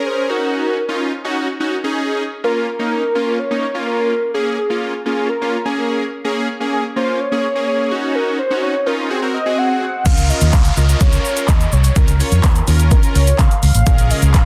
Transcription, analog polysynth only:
0.00 0.28 C#4 medium
0.00 0.30 G#4 medium
0.00 0.30 A#4 medium
0.29 0.77 C#4 medium
0.29 0.77 D#4 medium
0.29 0.77 F#4 medium
0.89 1.12 C#4 medium
0.89 1.12 D#4 medium
0.89 1.12 F4 medium
1.24 1.48 C#4 medium
1.24 1.48 D#4 medium
1.24 1.48 F#4 loud
1.60 1.76 C#4 medium
1.60 1.76 D#4 medium
1.60 1.76 F#4 loud
1.84 2.23 C#4 medium
1.84 2.23 D#4 medium
1.84 2.23 G#4 loud
2.44 2.67 A#3 medium
2.44 2.67 C#4 medium
2.44 2.67 F4 medium
2.79 3.03 A#3 medium
2.79 3.03 C#4 medium
2.79 3.03 D#4 medium
3.15 3.38 A#3 medium
3.15 3.38 C#4 medium
3.15 3.39 F4 medium
3.51 3.66 A#3 medium
3.51 3.66 C#4 medium
3.51 3.67 D#4 medium
3.74 4.13 A#3 medium
3.74 4.13 C#4 medium
3.74 4.13 F4 medium
4.34 4.57 A#3 medium
4.34 4.58 C#4 medium
4.34 4.58 G#4 medium
4.70 4.93 A#3 medium
4.70 4.93 C#4 medium
4.70 4.93 F4 medium
5.06 5.29 A#3 medium
5.06 5.29 C#4 medium
5.06 5.29 F4 medium
5.41 5.57 A#3 medium
5.41 5.57 C#4 medium
5.41 5.57 F4 medium
5.65 6.04 A#3 medium
5.65 6.04 C#4 medium
5.65 6.04 G#4 medium
6.24 6.48 A#3 medium
6.24 6.48 C#4 medium
6.24 6.48 G#4 medium
6.60 6.84 A#3 medium
6.60 6.84 C#4 medium
6.60 6.84 G#4 medium
6.96 7.19 A#3 medium
6.96 7.19 C#4 medium
6.96 7.20 F4 medium
7.32 7.47 A#3 medium
7.32 7.47 C#4 medium
7.32 7.47 G#4 medium
7.55 7.91 A#3 medium
7.55 7.90 C#4 medium
7.55 7.91 G#4 medium
7.91 8.39 C#4 medium
7.91 8.39 D#4 medium
7.91 8.39 F#4 medium
8.50 8.74 C#4 medium
8.50 8.74 D#4 medium
8.50 8.74 F#4 medium
8.86 9.10 C#4 medium
8.86 9.10 D#4 medium
8.86 9.10 F4 medium
9.10 9.20 C4 medium
9.10 9.20 F#4 medium
9.10 9.20 G#4 medium
9.22 9.38 C4 medium
9.22 9.38 F#4 medium
9.22 9.38 A#4 medium
9.46 9.85 C4 medium
9.46 9.85 F#4 medium
9.46 9.85 G#4 medium
10.05 10.52 C#4 medium
10.05 10.52 F4 medium
10.05 10.52 A#4 medium
10.77 10.85 C#4 medium
10.77 10.85 F4 medium
10.77 10.85 A#4 medium
10.89 11.51 C#4 medium
10.89 11.51 F4 medium
10.89 11.51 A#4 medium
11.96 12.11 C#4 medium
11.96 12.12 F4 medium
11.96 12.12 A#4 medium
12.20 12.51 C#4 medium
12.20 12.51 F4 medium
12.20 12.51 C#5 medium
12.67 13.29 C#4 medium
12.67 13.29 F4 medium
12.67 13.30 A#4 loud
13.86 14.33 C#4 medium
13.86 14.33 G#4 medium
13.86 14.33 A#4 medium

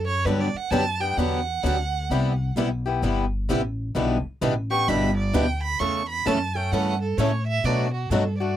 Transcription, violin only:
0.07 0.27 C#5 loud
0.25 0.42 B4 medium
0.41 0.58 D5 medium
0.56 0.72 F#5 medium
0.71 1.02 A5 loud
1.01 1.19 G5 loud
1.17 2.56 F#5 medium
4.71 4.90 C#6 loud
4.89 5.16 B5 loud
5.17 5.36 D5 medium
5.35 5.62 G5 loud
5.63 5.81 B5 loud
5.79 6.08 C#6 loud
6.09 6.28 B5 loud
6.27 6.57 A5 loud
6.56 6.73 G5 medium
6.72 7.01 F#5 medium
7.02 7.20 A4 medium
7.18 7.46 C#5 medium
7.47 7.66 E5 loud
7.65 7.93 D5 medium
7.94 8.11 F#4 medium
8.10 8.38 A4 medium
8.39 8.57 D5 medium

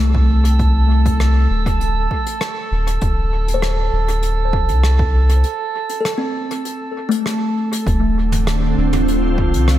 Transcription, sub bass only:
0.00 1.47 C2 medium
1.50 2.08 D1 loud
2.71 2.98 D1 loud
3.02 3.90 D1 loud
3.93 4.70 D1 medium
4.69 5.44 C2 medium
7.87 8.75 D1 loud
8.77 9.55 D1 medium
9.54 9.79 C2 medium

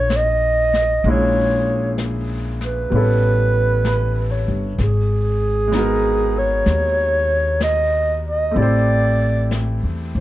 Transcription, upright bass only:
0.00 1.00 A#1 medium
1.04 2.88 A#1 medium
2.92 4.43 A1 medium
4.48 4.77 G1 medium
4.78 6.62 G#1 medium
6.66 8.52 D#2 medium
8.56 9.79 A1 medium
9.83 10.13 E2 medium
10.15 10.20 C2 medium

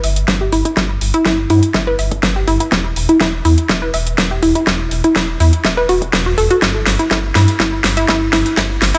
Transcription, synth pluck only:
0.04 0.16 E5 medium
0.41 0.45 G4 medium
0.53 0.61 E4 loud
0.65 0.73 E4 medium
0.77 0.85 E4 medium
1.14 1.22 E4 loud
1.26 1.34 E4 loud
1.50 1.58 E4 loud
1.75 1.83 E5 medium
1.87 1.95 B4 loud
1.99 2.11 E5 medium
2.36 2.40 G4 medium
2.48 2.56 E4 loud
2.60 2.68 E4 medium
2.72 2.80 E4 medium
3.09 3.17 E4 loud
3.21 3.29 E4 loud
3.45 3.53 E4 loud
3.69 3.78 E5 medium
3.82 3.90 B4 loud
3.94 4.06 E5 medium
4.31 4.36 G4 medium
4.43 4.51 E4 loud
4.55 4.63 E4 medium
4.67 4.75 E4 medium
5.04 5.12 E4 loud
5.16 5.24 E4 loud
5.40 5.49 E4 loud
5.65 5.73 E5 medium
5.77 5.85 B4 loud
5.89 6.01 F#4 loud
6.26 6.31 F#4 medium
6.38 6.46 A4 loud
6.51 6.58 F#4 loud
6.62 6.70 E4 medium
6.99 7.07 E4 medium
7.11 7.19 E4 medium
7.36 7.44 E4 medium
7.60 7.68 E4 medium
7.97 8.04 E4 loud
8.09 8.17 E4 loud
8.33 8.41 E4 medium
8.57 8.66 E4 medium
8.95 8.98 E4 loud

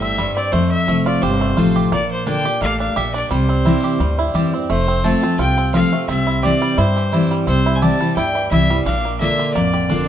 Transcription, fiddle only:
0.02 0.34 E5 loud
0.36 0.54 D5 medium
0.52 0.71 C5 medium
0.71 1.04 E5 medium
1.07 1.24 D5 medium
1.22 1.76 C5 medium
1.93 2.10 D5 medium
2.12 2.26 C5 medium
2.29 2.60 G5 medium
2.62 2.79 F5 medium
2.80 2.98 F5 medium
2.97 3.14 E5 medium
3.15 3.30 D5 medium
3.31 4.49 C5 medium
4.70 5.06 C5 loud
5.05 5.39 A5 loud
5.40 5.72 G5 loud
5.74 6.06 F5 loud
6.09 6.41 E5 loud
6.44 6.80 D5 loud
6.78 7.31 C5 medium
7.47 7.77 C5 medium
7.76 7.84 G#5 medium
7.82 8.16 A5 loud
8.16 8.49 G5 loud
8.51 8.84 E5 loud
8.85 9.18 F5 loud
9.21 9.53 E5 medium
9.54 10.04 D5 medium

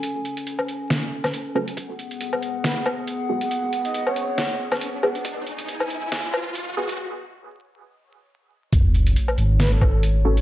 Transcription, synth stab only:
1.55 1.67 C#4 loud
1.55 1.67 F#4 medium
1.55 1.67 A4 loud
3.29 3.41 B3 medium
3.29 3.41 F#4 medium
3.29 3.41 G#4 loud
5.03 5.15 B3 loud
5.03 5.15 F#4 medium
5.03 5.15 G#4 loud
6.77 6.89 B3 loud
6.77 6.89 F#4 medium
6.77 6.89 G#4 loud
10.25 10.37 C#4 loud
10.25 10.37 F#4 medium
10.25 10.37 A4 loud

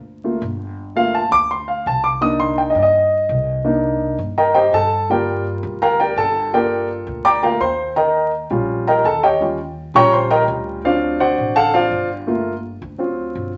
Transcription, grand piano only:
0.24 0.40 A3 soft
0.24 0.40 A#3 soft
0.24 0.41 F4 soft
0.96 1.20 A3 medium
0.96 1.20 A#3 soft
0.96 1.20 F4 medium
0.96 1.14 F5 medium
1.15 1.32 A5 medium
1.32 1.49 D6 loud
1.51 1.68 C6 medium
1.68 1.85 F5 medium
1.87 2.04 A5 medium
2.04 2.21 D6 medium
2.21 2.73 A#3 medium
2.21 2.73 D4 medium
2.21 2.73 D#4 medium
2.21 2.39 D#6 loud
2.40 2.57 C6 medium
2.58 2.69 G5 medium
2.70 2.81 D#5 medium
2.78 2.81 D5 medium
2.82 3.68 D#5 medium
3.64 4.16 A#3 medium
3.64 4.17 D4 medium
3.64 4.17 D#4 medium
4.38 4.55 A#4 medium
4.38 4.54 D#5 medium
4.38 4.53 G5 medium
4.38 4.55 A#5 medium
4.55 4.73 G4 medium
4.55 4.73 C5 medium
4.55 4.73 D#5 medium
4.55 4.73 G5 medium
4.74 5.07 A4 medium
4.74 5.07 A5 loud
5.10 6.50 G3 medium
5.10 6.50 A#3 medium
5.10 6.50 F4 medium
5.10 5.44 G4 medium
5.10 5.44 A#4 medium
5.10 5.44 D5 medium
5.10 5.44 G5 medium
5.82 5.99 A#4 medium
5.82 5.99 F5 medium
5.82 5.98 G5 medium
5.82 5.99 A#5 medium
6.00 6.18 G4 medium
6.00 6.18 A#4 medium
6.00 6.17 D5 medium
6.00 6.17 G5 medium
6.18 6.51 A4 medium
6.18 6.51 A5 medium
6.53 7.41 A#3 medium
6.53 7.42 F4 medium
6.53 6.87 G4 medium
6.53 7.93 A4 medium
6.53 6.87 A#4 medium
6.53 6.87 D5 medium
6.53 6.87 G5 medium
7.25 7.43 D5 medium
7.25 7.41 G5 medium
7.25 7.42 A#5 medium
7.25 7.42 D6 loud
7.43 7.59 A3 soft
7.43 7.59 A#3 soft
7.43 7.59 F4 soft
7.43 7.61 A#4 medium
7.43 7.61 F5 medium
7.43 7.61 G5 medium
7.43 7.61 A#5 medium
7.61 7.94 C5 medium
7.61 7.94 C6 medium
7.96 8.30 A#4 medium
7.96 8.31 D#5 medium
7.96 8.30 G5 medium
7.96 8.30 A#5 medium
8.51 9.02 G3 medium
8.51 9.02 C#4 medium
8.51 9.03 F4 medium
8.87 9.05 A#4 medium
8.87 9.05 D#5 medium
8.87 9.05 G5 medium
8.87 9.05 A#5 medium
9.05 9.23 A4 medium
9.05 9.23 A5 medium
9.23 9.41 G4 medium
9.23 9.41 C#5 medium
9.23 9.41 D#5 medium
9.23 9.41 G5 medium
9.40 9.57 G3 medium
9.40 9.57 C#4 soft
9.40 9.58 F4 medium
9.95 10.81 G3 medium
9.95 10.81 C#4 medium
9.95 10.81 F4 medium
9.95 10.13 C#5 loud
9.95 10.13 G5 loud
9.95 10.13 A#5 medium
9.95 10.13 C#6 loud
10.13 10.31 C5 medium
10.13 10.30 C6 medium
10.30 10.41 A#4 medium
10.30 10.42 D#5 medium
10.30 10.42 G5 medium
10.30 10.41 A#5 medium
10.84 11.72 F#3 medium
10.84 11.72 C4 soft
10.84 12.25 D4 medium
10.84 11.19 F4 medium
10.84 11.18 C5 medium
10.84 11.18 D5 medium
10.84 11.18 F5 medium
11.20 11.54 F#4 medium
11.20 11.54 C5 medium
11.20 11.54 D5 medium
11.20 11.54 F#5 medium
11.56 11.74 A4 medium
11.56 11.72 F5 medium
11.56 11.74 F#5 medium
11.56 11.74 A5 loud
11.74 11.90 F#3 soft
11.74 11.90 C4 soft
11.74 12.08 F4 medium
11.74 12.08 C5 medium
11.74 12.08 D5 medium
11.74 12.08 F5 medium
12.27 12.52 A3 medium
12.27 12.52 A#3 medium
12.27 12.52 F4 medium
12.98 13.50 F#3 medium
12.98 13.51 C4 soft
12.98 13.51 F4 medium

